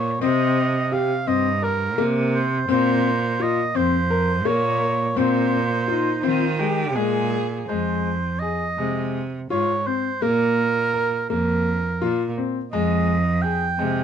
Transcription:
0.00 0.10 A#2 medium
0.00 0.21 C#5 medium
0.21 1.11 C3 medium
0.21 0.59 C4 medium
0.21 0.94 D#5 medium
0.92 1.11 G4 medium
0.92 1.29 F5 medium
1.27 2.00 G2 medium
1.27 1.46 C4 medium
1.27 1.65 D#5 medium
1.62 1.81 A#4 medium
1.62 2.07 A#4 medium
1.98 2.58 C3 medium
1.98 2.36 A#3 medium
2.35 2.67 C5 medium
2.68 3.59 A#2 medium
2.68 3.06 C4 medium
2.68 3.43 C5 loud
3.40 3.59 F4 medium
3.40 3.77 D#5 medium
3.75 4.46 F2 medium
3.75 3.94 C4 medium
3.75 4.48 C5 medium
4.10 4.29 A#4 medium
4.45 5.05 A#2 medium
4.45 4.83 A#3 medium
4.45 5.17 C#5 loud
5.15 6.07 A#2 medium
5.15 5.55 C4 medium
5.15 6.93 C5 medium
5.87 6.24 D#4 medium
5.87 6.07 F4 medium
6.23 6.97 D#3 medium
6.23 6.43 C4 medium
6.23 6.61 F4 medium
6.59 6.79 G#3 medium
6.59 6.96 G4 medium
6.95 7.58 A#2 medium
6.95 7.35 G#3 medium
6.95 7.69 G#4 medium
7.68 8.62 F2 medium
7.68 8.08 G#3 medium
7.68 8.41 C5 medium
8.39 8.62 G#4 medium
8.39 9.13 D#5 medium
8.78 9.39 C3 medium
8.78 9.17 G#3 medium
9.50 9.81 G#2 medium
9.50 9.70 F4 medium
9.50 9.88 C#5 medium
9.87 10.06 C4 medium
9.87 10.24 C5 medium
10.22 11.13 A#2 medium
10.22 10.60 A#3 medium
10.22 11.29 A#4 loud
10.94 11.13 A#4 medium
11.29 11.90 F2 medium
11.29 11.68 A#3 medium
11.29 12.32 A#4 medium
12.01 12.31 A#2 medium
12.01 12.20 F4 medium
12.38 12.56 C4 medium
12.72 13.62 F2 medium
12.72 13.11 G#3 medium
12.72 13.44 D#5 medium
13.42 13.62 G#4 medium
13.42 14.04 G5 loud
13.78 14.04 C3 medium
13.78 14.04 G#3 medium

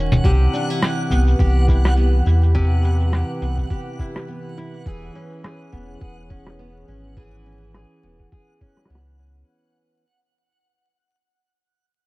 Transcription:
0.00 0.20 D#1 medium
0.00 0.24 D#3 medium
0.00 0.31 A#3 medium
0.00 0.25 C#4 medium
0.00 0.31 C#4 soft
0.00 0.24 F#4 medium
0.00 0.25 A#4 medium
0.00 9.49 F#5 medium
0.12 closed hi-hat soft
0.12 low conga medium
0.12 shaker soft
0.24 0.48 C2 medium
0.24 2.53 C3 medium
0.24 9.48 E3 medium
0.24 0.81 G4 medium
0.24 kick loud
0.24 shaker soft
0.53 0.70 D4 medium
0.53 shaker medium
0.60 4.86 G4 medium
0.70 1.67 E4 soft
0.70 shaker soft
0.82 1.39 G4 medium
0.82 cross-stick medium
0.82 shaker soft
1.02 9.48 B4 medium
1.11 1.34 C2 medium
1.11 1.97 B3 medium
1.11 kick medium
1.11 shaker medium
1.28 shaker soft
1.39 2.22 C2 medium
1.39 2.54 G4 medium
1.39 kick loud
1.39 shaker soft
1.68 2.26 E4 medium
1.68 kick medium
1.68 shaker medium
1.85 cross-stick medium
1.85 shaker soft
1.87 shaker soft
1.92 shaker soft
1.94 shaker soft
1.96 3.41 B3 medium
1.96 shaker soft
1.98 shaker soft
2.26 3.23 E2 medium
2.26 2.83 E4 medium
2.26 shaker medium
2.43 shaker soft
2.55 4.86 C3 medium
2.55 3.11 G4 medium
2.55 kick loud
2.64 shaker soft
2.83 3.99 E4 medium
2.83 shaker medium
3.01 shaker soft
3.12 3.69 G4 medium
3.12 cross-stick medium
3.12 shaker soft
3.42 3.65 C2 medium
3.42 4.28 B3 soft
3.42 shaker medium
3.58 kick soft
3.58 shaker soft
3.70 4.86 G4 medium
3.70 kick loud
3.70 shaker soft
3.99 4.57 E4 medium
3.99 kick medium
3.99 shaker medium
4.16 cross-stick medium
4.16 shaker soft
4.28 5.18 B3 medium
4.28 shaker soft
4.57 5.15 E4 medium
4.57 shaker medium
4.74 shaker soft
4.86 5.09 E1 medium
4.86 7.17 E3 medium
4.86 5.44 G#4 medium
4.86 kick loud
4.86 shaker soft
4.92 9.48 C#4 medium
5.12 6.30 C#4 medium
5.12 9.48 G#4 medium
5.12 shaker medium
5.32 shaker soft
5.44 6.01 G#4 medium
5.44 cross-stick medium
5.44 shaker soft
5.72 5.96 E1 medium
5.72 6.59 B3 medium
5.72 kick soft
5.72 shaker medium
6.01 6.84 E1 medium
6.01 7.17 G#4 medium
6.01 kick loud
6.01 shaker soft
6.30 6.88 C#4 medium
6.30 kick medium
6.30 shaker medium
6.47 cross-stick medium
6.47 shaker soft
6.59 8.03 B3 medium
6.59 shaker soft
6.88 7.85 G#1 medium
6.88 7.45 C#4 medium
6.88 shaker medium
7.05 shaker soft
7.17 10.04 E3 medium
7.17 7.74 G#4 medium
7.17 kick loud
7.17 shaker soft
7.46 8.61 C#4 medium
7.46 shaker medium
7.62 shaker soft
7.74 8.32 G#4 medium
7.74 cross-stick medium
7.74 shaker soft
8.03 8.27 E1 medium
8.03 8.90 B3 soft
8.03 shaker medium
8.20 kick soft
8.20 shaker soft
8.23 shaker soft
8.28 kick medium
8.28 shaker soft
8.32 10.04 G#4 medium
8.32 shaker soft
8.61 9.19 C#4 medium
8.61 kick medium
8.61 shaker medium
8.77 cross-stick soft
8.85 cross-stick soft
8.90 9.43 C#2 medium
8.90 10.04 B3 medium
8.95 cross-stick soft
9.19 10.04 C#4 soft

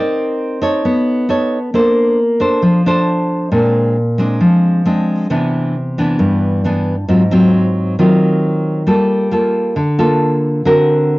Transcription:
0.00 0.82 C4 medium
0.00 0.58 D#4 medium
0.00 0.58 A#4 medium
0.00 0.58 D5 medium
0.62 1.25 D#4 medium
0.62 1.25 A4 medium
0.62 1.26 C#5 medium
0.85 1.72 B3 medium
1.29 1.58 D#4 medium
1.29 1.58 A4 medium
1.29 1.58 C#5 medium
1.74 2.61 A#3 medium
1.74 2.18 D4 medium
1.74 2.18 A4 medium
1.74 2.19 C5 medium
2.40 2.81 D4 medium
2.40 2.81 A4 medium
2.40 2.82 C5 medium
2.62 3.49 F3 medium
2.86 3.49 D4 medium
2.86 3.49 A4 medium
2.86 3.49 C5 medium
3.52 4.39 A#2 medium
3.52 3.96 G#3 medium
3.52 3.96 C4 medium
3.52 3.96 D4 medium
4.18 4.82 G#3 medium
4.18 4.82 C4 medium
4.18 4.82 D4 medium
4.41 5.28 F3 medium
4.86 5.27 G#3 medium
4.86 5.27 C4 soft
4.86 5.27 D4 medium
5.30 6.17 C3 medium
5.30 5.75 E3 medium
5.30 5.74 B3 medium
5.30 5.75 D4 medium
5.98 6.61 E3 medium
5.98 6.61 B3 medium
5.98 6.61 D4 medium
6.19 7.06 G2 medium
6.64 6.94 E3 medium
6.64 6.95 B3 medium
6.64 6.95 D4 medium
7.08 7.96 G#2 medium
7.08 7.22 F#3 medium
7.08 7.22 C4 medium
7.08 7.22 F4 medium
7.31 7.94 F#3 medium
7.31 7.95 C4 medium
7.31 7.95 F4 medium
7.99 8.85 D#3 medium
7.99 8.84 F#3 soft
7.99 8.84 C4 soft
7.99 8.84 F4 medium
8.87 9.74 G3 medium
8.87 9.28 A#3 medium
8.87 9.29 F4 medium
8.87 9.28 A4 medium
9.31 9.76 A#3 medium
9.31 9.76 F4 medium
9.31 9.77 A4 medium
9.76 10.63 D3 medium
9.99 10.62 A#3 medium
9.99 10.62 F4 medium
9.99 10.62 A4 medium
10.65 11.19 D3 medium
10.65 11.19 C4 medium
10.65 11.19 F#4 medium
10.65 11.19 A#4 medium

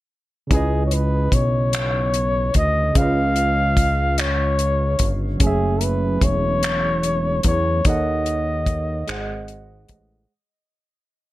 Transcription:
0.47 2.90 C#3 medium
0.47 2.91 C#4 soft
0.47 kick loud
0.47 closed hi-hat medium
0.51 1.29 C#2 loud
0.51 2.92 E4 soft
0.51 0.83 G#4 medium
0.51 2.93 B4 soft
0.56 2.95 D#5 medium
0.86 0.95 C#5 medium
0.91 1.35 B4 medium
0.91 closed hi-hat soft
1.32 2.51 B1 medium
1.32 2.56 C#5 medium
1.32 kick medium
1.32 closed hi-hat medium
1.73 finger snap medium
1.73 closed hi-hat medium
2.14 closed hi-hat soft
2.54 2.92 D2 medium
2.54 2.99 D#5 medium
2.54 kick medium
2.54 closed hi-hat medium
2.93 4.96 C#2 loud
2.93 5.35 C#3 medium
2.93 5.36 C#4 soft
2.93 kick loud
2.93 closed hi-hat medium
2.97 5.37 F4 soft
2.97 5.39 B4 soft
2.97 4.21 F5 loud
3.02 5.40 D#5 medium
3.36 closed hi-hat soft
3.77 kick medium
3.77 closed hi-hat medium
4.18 5.10 C#5 medium
4.18 finger snap medium
4.18 closed hi-hat medium
4.59 closed hi-hat medium
4.99 5.37 G1 medium
4.99 kick medium
4.99 closed hi-hat medium
5.37 6.18 F#1 medium
5.37 7.80 F#3 medium
5.37 7.81 C#4 medium
5.37 kick loud
5.37 closed hi-hat medium
5.42 7.83 A3 soft
5.42 5.84 G#4 medium
5.42 7.82 G#4 soft
5.47 7.85 E5 medium
5.81 6.25 B4 medium
5.81 closed hi-hat soft
6.21 7.41 E1 medium
6.21 7.45 C#5 medium
6.21 kick medium
6.21 closed hi-hat medium
6.63 finger snap medium
6.63 closed hi-hat medium
7.03 closed hi-hat medium
7.43 7.82 E2 medium
7.43 7.88 C#5 medium
7.43 kick medium
7.43 closed hi-hat medium
7.85 9.04 D#2 loud
7.85 9.08 D#3 medium
7.85 9.08 D#4 soft
7.85 9.09 A4 medium
7.85 9.09 C#5 soft
7.85 9.90 D#5 medium
7.85 kick loud
7.85 closed hi-hat medium
7.89 9.10 F#5 medium
8.26 closed hi-hat soft
8.66 kick medium
8.66 closed hi-hat medium
9.07 9.86 G#1 loud
9.07 10.30 G#3 medium
9.07 10.31 G#4 medium
9.07 10.31 C5 medium
9.07 10.32 D#5 medium
9.07 finger snap medium
9.07 closed hi-hat medium
9.12 10.32 F#5 medium
9.48 closed hi-hat medium
9.89 10.27 A1 medium
9.89 kick medium
9.89 closed hi-hat medium

